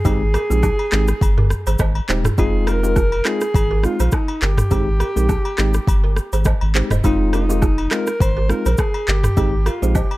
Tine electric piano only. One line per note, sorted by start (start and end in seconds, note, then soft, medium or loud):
0.05 0.22 G#3 medium
0.05 0.22 C4 medium
0.05 0.22 D#4 medium
0.05 0.22 G4 loud
0.50 0.64 G#3 medium
0.50 0.64 C4 medium
0.50 0.64 D#4 medium
0.50 0.64 G4 medium
0.92 1.09 G#3 medium
0.92 1.09 C4 medium
0.92 1.09 D#4 medium
0.92 1.09 G4 medium
2.08 2.25 G#3 medium
2.08 2.26 C4 medium
2.08 2.26 D#4 medium
2.08 2.26 G4 medium
2.38 2.79 G#3 medium
2.38 2.79 C4 medium
2.38 2.79 D#4 medium
2.38 2.79 F4 loud
2.83 2.97 G#3 medium
2.83 2.97 C4 medium
2.83 2.97 D#4 medium
2.83 2.97 F4 medium
3.25 3.42 G#3 medium
3.25 3.42 C4 medium
3.25 3.42 D#4 medium
3.25 3.42 F4 medium
3.83 4.00 G#3 medium
3.83 4.00 C4 medium
3.83 4.00 D#4 medium
3.83 4.01 F4 medium
4.71 4.88 G#3 medium
4.71 4.88 C4 medium
4.71 4.88 D#4 medium
4.71 4.88 G4 loud
5.16 5.30 G#3 medium
5.16 5.30 C4 medium
5.16 5.30 D#4 medium
5.16 5.30 G4 medium
5.58 5.75 G#3 medium
5.58 5.75 C4 medium
5.58 5.75 D#4 medium
5.58 5.75 G4 medium
6.75 6.91 G#3 medium
6.75 6.92 C4 medium
6.75 6.92 D#4 medium
6.75 6.92 G4 medium
7.04 7.45 G#3 loud
7.04 7.45 C4 medium
7.04 7.45 D#4 medium
7.04 7.45 F4 loud
7.49 7.63 G#3 medium
7.49 7.63 C4 medium
7.49 7.63 D#4 medium
7.49 7.63 F4 medium
7.91 8.08 G#3 medium
7.91 8.08 C4 medium
7.91 8.08 D#4 medium
7.91 8.08 F4 medium
8.49 8.66 G#3 medium
8.49 8.66 C4 medium
8.49 8.66 D#4 medium
8.49 8.66 F4 medium
9.37 9.54 G#3 loud
9.37 9.54 C4 medium
9.37 9.54 D#4 medium
9.37 9.54 G4 loud
9.82 9.96 G#3 medium
9.82 9.96 C4 medium
9.82 9.96 D#4 medium
9.82 9.96 G4 medium